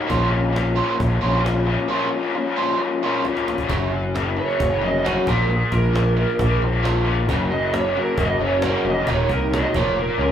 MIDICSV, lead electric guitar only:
0, 0, Header, 1, 2, 480
1, 0, Start_track
1, 0, Tempo, 448430
1, 116, Time_signature, 4, 2, 24, 8
1, 11044, End_track
2, 0, Start_track
2, 0, Title_t, "Lead electric guitar"
2, 0, Program_c, 0, 29
2, 4703, Note_on_c, 0, 73, 91
2, 5160, Note_off_c, 0, 73, 0
2, 5184, Note_on_c, 0, 75, 65
2, 5407, Note_off_c, 0, 75, 0
2, 5419, Note_on_c, 0, 80, 82
2, 5643, Note_on_c, 0, 70, 65
2, 5645, Note_off_c, 0, 80, 0
2, 5898, Note_off_c, 0, 70, 0
2, 5898, Note_on_c, 0, 68, 74
2, 6124, Note_off_c, 0, 68, 0
2, 6135, Note_on_c, 0, 70, 83
2, 7060, Note_off_c, 0, 70, 0
2, 8047, Note_on_c, 0, 75, 84
2, 8277, Note_off_c, 0, 75, 0
2, 8315, Note_on_c, 0, 73, 79
2, 8531, Note_off_c, 0, 73, 0
2, 8569, Note_on_c, 0, 70, 71
2, 8778, Note_off_c, 0, 70, 0
2, 8818, Note_on_c, 0, 75, 77
2, 9022, Note_off_c, 0, 75, 0
2, 9047, Note_on_c, 0, 73, 78
2, 9256, Note_off_c, 0, 73, 0
2, 9267, Note_on_c, 0, 70, 81
2, 9486, Note_off_c, 0, 70, 0
2, 9515, Note_on_c, 0, 75, 82
2, 9730, Note_off_c, 0, 75, 0
2, 9758, Note_on_c, 0, 73, 76
2, 9971, Note_off_c, 0, 73, 0
2, 9987, Note_on_c, 0, 70, 65
2, 10205, Note_off_c, 0, 70, 0
2, 10220, Note_on_c, 0, 75, 79
2, 10440, Note_off_c, 0, 75, 0
2, 10444, Note_on_c, 0, 73, 68
2, 10673, Note_off_c, 0, 73, 0
2, 10695, Note_on_c, 0, 70, 85
2, 10918, Note_off_c, 0, 70, 0
2, 10944, Note_on_c, 0, 70, 83
2, 11044, Note_off_c, 0, 70, 0
2, 11044, End_track
0, 0, End_of_file